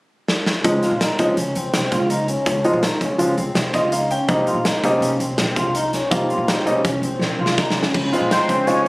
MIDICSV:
0, 0, Header, 1, 6, 480
1, 0, Start_track
1, 0, Tempo, 364964
1, 846, Time_signature, 5, 2, 24, 8
1, 11680, End_track
2, 0, Start_track
2, 0, Title_t, "Analog synth lead"
2, 0, Program_c, 0, 81
2, 10947, Note_on_c, 0, 72, 97
2, 10947, Note_on_c, 0, 79, 97
2, 11399, Note_on_c, 0, 73, 91
2, 11399, Note_on_c, 0, 80, 91
2, 11419, Note_off_c, 0, 72, 0
2, 11419, Note_off_c, 0, 79, 0
2, 11680, Note_off_c, 0, 73, 0
2, 11680, Note_off_c, 0, 80, 0
2, 11680, End_track
3, 0, Start_track
3, 0, Title_t, "Clean electric guitar"
3, 0, Program_c, 1, 27
3, 852, Note_on_c, 1, 61, 76
3, 1047, Note_off_c, 1, 61, 0
3, 1095, Note_on_c, 1, 65, 71
3, 1288, Note_off_c, 1, 65, 0
3, 1327, Note_on_c, 1, 63, 71
3, 1524, Note_off_c, 1, 63, 0
3, 1566, Note_on_c, 1, 61, 65
3, 1763, Note_off_c, 1, 61, 0
3, 1809, Note_on_c, 1, 61, 70
3, 2005, Note_off_c, 1, 61, 0
3, 2046, Note_on_c, 1, 60, 61
3, 2243, Note_off_c, 1, 60, 0
3, 2288, Note_on_c, 1, 60, 75
3, 2483, Note_off_c, 1, 60, 0
3, 2527, Note_on_c, 1, 65, 66
3, 2723, Note_off_c, 1, 65, 0
3, 2763, Note_on_c, 1, 63, 74
3, 2961, Note_off_c, 1, 63, 0
3, 3001, Note_on_c, 1, 61, 59
3, 3199, Note_off_c, 1, 61, 0
3, 3241, Note_on_c, 1, 61, 85
3, 3439, Note_off_c, 1, 61, 0
3, 3482, Note_on_c, 1, 65, 74
3, 3679, Note_off_c, 1, 65, 0
3, 3720, Note_on_c, 1, 63, 77
3, 3918, Note_off_c, 1, 63, 0
3, 3962, Note_on_c, 1, 61, 73
3, 4159, Note_off_c, 1, 61, 0
3, 4199, Note_on_c, 1, 61, 81
3, 4397, Note_off_c, 1, 61, 0
3, 4447, Note_on_c, 1, 60, 69
3, 4642, Note_off_c, 1, 60, 0
3, 4688, Note_on_c, 1, 60, 71
3, 4882, Note_off_c, 1, 60, 0
3, 4921, Note_on_c, 1, 65, 65
3, 5118, Note_off_c, 1, 65, 0
3, 5166, Note_on_c, 1, 63, 79
3, 5361, Note_off_c, 1, 63, 0
3, 5406, Note_on_c, 1, 61, 62
3, 5601, Note_off_c, 1, 61, 0
3, 5644, Note_on_c, 1, 63, 77
3, 5840, Note_off_c, 1, 63, 0
3, 5884, Note_on_c, 1, 65, 72
3, 6080, Note_off_c, 1, 65, 0
3, 6127, Note_on_c, 1, 63, 71
3, 6321, Note_off_c, 1, 63, 0
3, 6361, Note_on_c, 1, 61, 76
3, 6558, Note_off_c, 1, 61, 0
3, 6604, Note_on_c, 1, 61, 81
3, 6799, Note_off_c, 1, 61, 0
3, 6845, Note_on_c, 1, 60, 70
3, 7040, Note_off_c, 1, 60, 0
3, 7091, Note_on_c, 1, 60, 83
3, 7284, Note_off_c, 1, 60, 0
3, 7322, Note_on_c, 1, 65, 72
3, 7518, Note_off_c, 1, 65, 0
3, 7562, Note_on_c, 1, 63, 83
3, 7758, Note_off_c, 1, 63, 0
3, 7805, Note_on_c, 1, 61, 64
3, 8000, Note_off_c, 1, 61, 0
3, 8046, Note_on_c, 1, 63, 83
3, 8241, Note_off_c, 1, 63, 0
3, 8289, Note_on_c, 1, 65, 80
3, 8483, Note_off_c, 1, 65, 0
3, 8524, Note_on_c, 1, 63, 74
3, 8720, Note_off_c, 1, 63, 0
3, 8759, Note_on_c, 1, 61, 70
3, 8957, Note_off_c, 1, 61, 0
3, 9010, Note_on_c, 1, 61, 79
3, 9203, Note_off_c, 1, 61, 0
3, 9256, Note_on_c, 1, 60, 67
3, 9447, Note_off_c, 1, 60, 0
3, 9492, Note_on_c, 1, 60, 77
3, 9685, Note_off_c, 1, 60, 0
3, 9728, Note_on_c, 1, 65, 69
3, 9923, Note_off_c, 1, 65, 0
3, 9977, Note_on_c, 1, 63, 70
3, 10168, Note_off_c, 1, 63, 0
3, 10212, Note_on_c, 1, 61, 59
3, 10406, Note_off_c, 1, 61, 0
3, 10455, Note_on_c, 1, 61, 67
3, 10648, Note_off_c, 1, 61, 0
3, 10685, Note_on_c, 1, 65, 68
3, 10882, Note_off_c, 1, 65, 0
3, 10928, Note_on_c, 1, 63, 61
3, 11124, Note_off_c, 1, 63, 0
3, 11172, Note_on_c, 1, 61, 68
3, 11367, Note_off_c, 1, 61, 0
3, 11410, Note_on_c, 1, 61, 66
3, 11606, Note_off_c, 1, 61, 0
3, 11680, End_track
4, 0, Start_track
4, 0, Title_t, "Grand piano"
4, 0, Program_c, 2, 0
4, 845, Note_on_c, 2, 53, 54
4, 848, Note_on_c, 2, 60, 52
4, 850, Note_on_c, 2, 63, 65
4, 851, Note_on_c, 2, 56, 59
4, 1180, Note_off_c, 2, 53, 0
4, 1182, Note_off_c, 2, 60, 0
4, 1183, Note_off_c, 2, 56, 0
4, 1183, Note_off_c, 2, 63, 0
4, 1564, Note_on_c, 2, 53, 55
4, 1567, Note_on_c, 2, 60, 55
4, 1567, Note_on_c, 2, 63, 72
4, 1568, Note_on_c, 2, 56, 53
4, 1732, Note_off_c, 2, 53, 0
4, 1733, Note_off_c, 2, 60, 0
4, 1733, Note_off_c, 2, 63, 0
4, 1734, Note_off_c, 2, 56, 0
4, 3479, Note_on_c, 2, 56, 59
4, 3479, Note_on_c, 2, 60, 59
4, 3480, Note_on_c, 2, 53, 67
4, 3481, Note_on_c, 2, 63, 74
4, 3648, Note_off_c, 2, 53, 0
4, 3648, Note_off_c, 2, 56, 0
4, 3648, Note_off_c, 2, 60, 0
4, 3649, Note_off_c, 2, 63, 0
4, 4186, Note_on_c, 2, 53, 70
4, 4188, Note_on_c, 2, 56, 59
4, 4194, Note_on_c, 2, 60, 62
4, 4200, Note_on_c, 2, 65, 70
4, 4361, Note_off_c, 2, 53, 0
4, 4362, Note_off_c, 2, 56, 0
4, 4365, Note_off_c, 2, 60, 0
4, 4368, Note_off_c, 2, 65, 0
4, 4923, Note_on_c, 2, 75, 67
4, 5144, Note_off_c, 2, 75, 0
4, 5159, Note_on_c, 2, 77, 65
4, 5382, Note_off_c, 2, 77, 0
4, 5404, Note_on_c, 2, 79, 65
4, 5625, Note_off_c, 2, 79, 0
4, 5636, Note_on_c, 2, 58, 60
4, 5639, Note_on_c, 2, 60, 58
4, 5640, Note_on_c, 2, 55, 62
4, 5642, Note_on_c, 2, 63, 71
4, 5973, Note_off_c, 2, 58, 0
4, 5974, Note_off_c, 2, 60, 0
4, 5975, Note_off_c, 2, 55, 0
4, 5976, Note_off_c, 2, 63, 0
4, 6371, Note_on_c, 2, 55, 67
4, 6371, Note_on_c, 2, 63, 89
4, 6373, Note_on_c, 2, 58, 74
4, 6373, Note_on_c, 2, 60, 70
4, 6700, Note_off_c, 2, 63, 0
4, 6701, Note_off_c, 2, 55, 0
4, 6702, Note_off_c, 2, 58, 0
4, 6702, Note_off_c, 2, 60, 0
4, 8034, Note_on_c, 2, 55, 61
4, 8035, Note_on_c, 2, 60, 53
4, 8036, Note_on_c, 2, 58, 61
4, 8040, Note_on_c, 2, 65, 68
4, 8708, Note_off_c, 2, 55, 0
4, 8709, Note_off_c, 2, 58, 0
4, 8709, Note_off_c, 2, 60, 0
4, 8711, Note_off_c, 2, 65, 0
4, 8754, Note_on_c, 2, 55, 69
4, 8758, Note_on_c, 2, 58, 63
4, 8759, Note_on_c, 2, 63, 77
4, 8761, Note_on_c, 2, 60, 62
4, 8925, Note_off_c, 2, 55, 0
4, 8926, Note_off_c, 2, 58, 0
4, 8927, Note_off_c, 2, 63, 0
4, 8928, Note_off_c, 2, 60, 0
4, 10684, Note_on_c, 2, 60, 60
4, 10689, Note_on_c, 2, 56, 59
4, 10690, Note_on_c, 2, 63, 50
4, 10692, Note_on_c, 2, 65, 63
4, 11357, Note_off_c, 2, 60, 0
4, 11359, Note_off_c, 2, 56, 0
4, 11359, Note_off_c, 2, 63, 0
4, 11360, Note_off_c, 2, 65, 0
4, 11405, Note_on_c, 2, 56, 66
4, 11406, Note_on_c, 2, 63, 66
4, 11409, Note_on_c, 2, 60, 62
4, 11411, Note_on_c, 2, 65, 76
4, 11573, Note_off_c, 2, 56, 0
4, 11573, Note_off_c, 2, 63, 0
4, 11575, Note_off_c, 2, 60, 0
4, 11575, Note_off_c, 2, 65, 0
4, 11680, End_track
5, 0, Start_track
5, 0, Title_t, "Upright bass"
5, 0, Program_c, 3, 32
5, 846, Note_on_c, 3, 37, 96
5, 1031, Note_off_c, 3, 37, 0
5, 1197, Note_on_c, 3, 46, 86
5, 1385, Note_off_c, 3, 46, 0
5, 1568, Note_on_c, 3, 37, 69
5, 1659, Note_off_c, 3, 37, 0
5, 1801, Note_on_c, 3, 49, 80
5, 1987, Note_off_c, 3, 49, 0
5, 2051, Note_on_c, 3, 37, 78
5, 2233, Note_off_c, 3, 37, 0
5, 2293, Note_on_c, 3, 36, 83
5, 2382, Note_off_c, 3, 36, 0
5, 2520, Note_on_c, 3, 37, 74
5, 3076, Note_off_c, 3, 37, 0
5, 3237, Note_on_c, 3, 37, 89
5, 3423, Note_off_c, 3, 37, 0
5, 3593, Note_on_c, 3, 46, 84
5, 3781, Note_off_c, 3, 46, 0
5, 3952, Note_on_c, 3, 37, 67
5, 4048, Note_off_c, 3, 37, 0
5, 4188, Note_on_c, 3, 49, 75
5, 4378, Note_off_c, 3, 49, 0
5, 4439, Note_on_c, 3, 37, 82
5, 4625, Note_off_c, 3, 37, 0
5, 4666, Note_on_c, 3, 36, 78
5, 4764, Note_off_c, 3, 36, 0
5, 4915, Note_on_c, 3, 37, 79
5, 5472, Note_off_c, 3, 37, 0
5, 5639, Note_on_c, 3, 36, 98
5, 5824, Note_off_c, 3, 36, 0
5, 5970, Note_on_c, 3, 46, 88
5, 6166, Note_off_c, 3, 46, 0
5, 6360, Note_on_c, 3, 36, 76
5, 6452, Note_off_c, 3, 36, 0
5, 6578, Note_on_c, 3, 48, 86
5, 6771, Note_off_c, 3, 48, 0
5, 6837, Note_on_c, 3, 36, 78
5, 7023, Note_off_c, 3, 36, 0
5, 7073, Note_on_c, 3, 34, 89
5, 7167, Note_off_c, 3, 34, 0
5, 7316, Note_on_c, 3, 36, 77
5, 7873, Note_off_c, 3, 36, 0
5, 8043, Note_on_c, 3, 36, 96
5, 8226, Note_off_c, 3, 36, 0
5, 8388, Note_on_c, 3, 46, 86
5, 8577, Note_off_c, 3, 46, 0
5, 8747, Note_on_c, 3, 36, 70
5, 8844, Note_off_c, 3, 36, 0
5, 9006, Note_on_c, 3, 48, 76
5, 9189, Note_off_c, 3, 48, 0
5, 9228, Note_on_c, 3, 36, 74
5, 9418, Note_off_c, 3, 36, 0
5, 9461, Note_on_c, 3, 34, 80
5, 9561, Note_off_c, 3, 34, 0
5, 9716, Note_on_c, 3, 36, 78
5, 10274, Note_off_c, 3, 36, 0
5, 10451, Note_on_c, 3, 37, 86
5, 10633, Note_off_c, 3, 37, 0
5, 10793, Note_on_c, 3, 46, 83
5, 10982, Note_off_c, 3, 46, 0
5, 11159, Note_on_c, 3, 37, 70
5, 11254, Note_off_c, 3, 37, 0
5, 11397, Note_on_c, 3, 49, 71
5, 11586, Note_off_c, 3, 49, 0
5, 11632, Note_on_c, 3, 37, 74
5, 11680, Note_off_c, 3, 37, 0
5, 11680, End_track
6, 0, Start_track
6, 0, Title_t, "Drums"
6, 374, Note_on_c, 9, 38, 66
6, 505, Note_off_c, 9, 38, 0
6, 610, Note_on_c, 9, 38, 73
6, 742, Note_off_c, 9, 38, 0
6, 848, Note_on_c, 9, 36, 95
6, 849, Note_on_c, 9, 42, 75
6, 980, Note_off_c, 9, 36, 0
6, 980, Note_off_c, 9, 42, 0
6, 1087, Note_on_c, 9, 38, 29
6, 1087, Note_on_c, 9, 42, 56
6, 1218, Note_off_c, 9, 38, 0
6, 1218, Note_off_c, 9, 42, 0
6, 1327, Note_on_c, 9, 38, 109
6, 1327, Note_on_c, 9, 42, 76
6, 1458, Note_off_c, 9, 38, 0
6, 1458, Note_off_c, 9, 42, 0
6, 1560, Note_on_c, 9, 42, 53
6, 1565, Note_on_c, 9, 36, 65
6, 1692, Note_off_c, 9, 42, 0
6, 1697, Note_off_c, 9, 36, 0
6, 1803, Note_on_c, 9, 42, 80
6, 1934, Note_off_c, 9, 42, 0
6, 2044, Note_on_c, 9, 42, 60
6, 2176, Note_off_c, 9, 42, 0
6, 2283, Note_on_c, 9, 38, 101
6, 2283, Note_on_c, 9, 42, 77
6, 2415, Note_off_c, 9, 38, 0
6, 2415, Note_off_c, 9, 42, 0
6, 2523, Note_on_c, 9, 36, 69
6, 2525, Note_on_c, 9, 42, 56
6, 2654, Note_off_c, 9, 36, 0
6, 2656, Note_off_c, 9, 42, 0
6, 2762, Note_on_c, 9, 42, 77
6, 2894, Note_off_c, 9, 42, 0
6, 3002, Note_on_c, 9, 42, 50
6, 3133, Note_off_c, 9, 42, 0
6, 3239, Note_on_c, 9, 36, 101
6, 3241, Note_on_c, 9, 42, 71
6, 3371, Note_off_c, 9, 36, 0
6, 3373, Note_off_c, 9, 42, 0
6, 3478, Note_on_c, 9, 42, 48
6, 3609, Note_off_c, 9, 42, 0
6, 3719, Note_on_c, 9, 38, 101
6, 3719, Note_on_c, 9, 42, 77
6, 3850, Note_off_c, 9, 38, 0
6, 3850, Note_off_c, 9, 42, 0
6, 3959, Note_on_c, 9, 36, 64
6, 3961, Note_on_c, 9, 42, 54
6, 4090, Note_off_c, 9, 36, 0
6, 4093, Note_off_c, 9, 42, 0
6, 4197, Note_on_c, 9, 42, 72
6, 4329, Note_off_c, 9, 42, 0
6, 4441, Note_on_c, 9, 42, 56
6, 4572, Note_off_c, 9, 42, 0
6, 4673, Note_on_c, 9, 38, 106
6, 4673, Note_on_c, 9, 42, 75
6, 4805, Note_off_c, 9, 38, 0
6, 4805, Note_off_c, 9, 42, 0
6, 4913, Note_on_c, 9, 38, 34
6, 4913, Note_on_c, 9, 42, 54
6, 4918, Note_on_c, 9, 36, 69
6, 5045, Note_off_c, 9, 38, 0
6, 5045, Note_off_c, 9, 42, 0
6, 5049, Note_off_c, 9, 36, 0
6, 5157, Note_on_c, 9, 42, 83
6, 5288, Note_off_c, 9, 42, 0
6, 5401, Note_on_c, 9, 42, 53
6, 5532, Note_off_c, 9, 42, 0
6, 5635, Note_on_c, 9, 42, 71
6, 5638, Note_on_c, 9, 36, 99
6, 5767, Note_off_c, 9, 42, 0
6, 5769, Note_off_c, 9, 36, 0
6, 5877, Note_on_c, 9, 42, 59
6, 6009, Note_off_c, 9, 42, 0
6, 6116, Note_on_c, 9, 38, 108
6, 6116, Note_on_c, 9, 42, 78
6, 6248, Note_off_c, 9, 38, 0
6, 6248, Note_off_c, 9, 42, 0
6, 6360, Note_on_c, 9, 36, 67
6, 6365, Note_on_c, 9, 42, 64
6, 6492, Note_off_c, 9, 36, 0
6, 6496, Note_off_c, 9, 42, 0
6, 6605, Note_on_c, 9, 42, 75
6, 6737, Note_off_c, 9, 42, 0
6, 6841, Note_on_c, 9, 42, 64
6, 6973, Note_off_c, 9, 42, 0
6, 7075, Note_on_c, 9, 38, 97
6, 7075, Note_on_c, 9, 42, 68
6, 7207, Note_off_c, 9, 38, 0
6, 7207, Note_off_c, 9, 42, 0
6, 7316, Note_on_c, 9, 42, 53
6, 7318, Note_on_c, 9, 36, 72
6, 7448, Note_off_c, 9, 42, 0
6, 7449, Note_off_c, 9, 36, 0
6, 7560, Note_on_c, 9, 42, 78
6, 7691, Note_off_c, 9, 42, 0
6, 7801, Note_on_c, 9, 38, 28
6, 7801, Note_on_c, 9, 42, 49
6, 7933, Note_off_c, 9, 38, 0
6, 7933, Note_off_c, 9, 42, 0
6, 8042, Note_on_c, 9, 36, 101
6, 8047, Note_on_c, 9, 42, 76
6, 8174, Note_off_c, 9, 36, 0
6, 8179, Note_off_c, 9, 42, 0
6, 8286, Note_on_c, 9, 42, 48
6, 8418, Note_off_c, 9, 42, 0
6, 8526, Note_on_c, 9, 38, 111
6, 8526, Note_on_c, 9, 42, 74
6, 8658, Note_off_c, 9, 38, 0
6, 8658, Note_off_c, 9, 42, 0
6, 8769, Note_on_c, 9, 42, 58
6, 8901, Note_off_c, 9, 42, 0
6, 9004, Note_on_c, 9, 42, 75
6, 9005, Note_on_c, 9, 36, 107
6, 9135, Note_off_c, 9, 42, 0
6, 9137, Note_off_c, 9, 36, 0
6, 9246, Note_on_c, 9, 42, 61
6, 9377, Note_off_c, 9, 42, 0
6, 9489, Note_on_c, 9, 38, 58
6, 9621, Note_off_c, 9, 38, 0
6, 9811, Note_on_c, 9, 38, 73
6, 9942, Note_off_c, 9, 38, 0
6, 9969, Note_on_c, 9, 36, 99
6, 9970, Note_on_c, 9, 38, 64
6, 10100, Note_off_c, 9, 36, 0
6, 10102, Note_off_c, 9, 38, 0
6, 10134, Note_on_c, 9, 38, 84
6, 10265, Note_off_c, 9, 38, 0
6, 10294, Note_on_c, 9, 38, 72
6, 10425, Note_off_c, 9, 38, 0
6, 10448, Note_on_c, 9, 36, 92
6, 10449, Note_on_c, 9, 49, 82
6, 10580, Note_off_c, 9, 36, 0
6, 10581, Note_off_c, 9, 49, 0
6, 10698, Note_on_c, 9, 42, 51
6, 10829, Note_off_c, 9, 42, 0
6, 10932, Note_on_c, 9, 38, 96
6, 10932, Note_on_c, 9, 42, 81
6, 11063, Note_off_c, 9, 38, 0
6, 11063, Note_off_c, 9, 42, 0
6, 11167, Note_on_c, 9, 36, 67
6, 11172, Note_on_c, 9, 42, 58
6, 11299, Note_off_c, 9, 36, 0
6, 11303, Note_off_c, 9, 42, 0
6, 11406, Note_on_c, 9, 38, 29
6, 11406, Note_on_c, 9, 42, 66
6, 11537, Note_off_c, 9, 38, 0
6, 11537, Note_off_c, 9, 42, 0
6, 11680, End_track
0, 0, End_of_file